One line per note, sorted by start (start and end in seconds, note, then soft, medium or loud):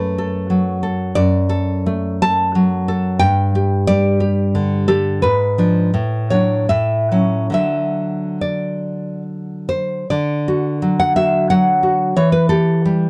0.00 1.11 F#2 medium
0.00 0.83 A3 soft
0.00 0.17 A4 medium
0.00 0.77 B4 medium
0.18 0.82 A4 medium
0.50 1.15 F#3 soft
0.83 1.15 A4 medium
1.15 3.18 F#2 medium
1.15 2.18 D5 medium
1.49 2.21 A4 medium
1.86 2.89 A3 medium
2.22 2.87 A4 medium
2.22 3.17 A5 loud
2.55 3.21 F#3 medium
2.88 3.21 A4 medium
3.19 5.18 G2 medium
3.19 3.84 G5 loud
3.55 4.19 G4 medium
3.87 4.88 G3 medium
3.87 4.84 D5 loud
4.20 4.87 G4 medium
4.55 5.23 D3 medium
4.88 5.23 G4 medium
4.88 5.21 A4 medium
5.22 5.92 G#2 medium
5.22 6.26 B4 medium
5.58 5.90 F3 soft
5.58 5.90 D4 medium
5.94 6.67 A2 medium
6.30 6.66 F#3 soft
6.30 6.66 D4 soft
6.30 6.67 C#5 medium
6.69 7.52 A2 soft
6.69 7.50 E5 medium
7.12 7.51 F#3 soft
7.12 7.49 C#4 soft
7.50 10.04 D3 soft
7.50 10.05 F#3 soft
7.50 10.05 D4 soft
7.50 8.38 E5 medium
8.41 9.22 D5 medium
9.69 10.08 C5 medium
10.10 12.13 D3 medium
10.10 10.96 D5 medium
10.48 11.15 F#4 medium
10.82 11.50 F#3 medium
11.00 11.16 F#5 medium
11.16 11.82 F#4 soft
11.16 11.48 E5 medium
11.50 12.16 F#3 soft
11.50 12.14 F#5 medium
11.83 12.16 F#4 soft
12.16 13.10 E3 medium
12.16 12.32 C#5 medium
12.32 12.49 B4 medium
12.49 13.10 G4 medium
12.49 13.10 A4 medium
12.85 13.10 G3 medium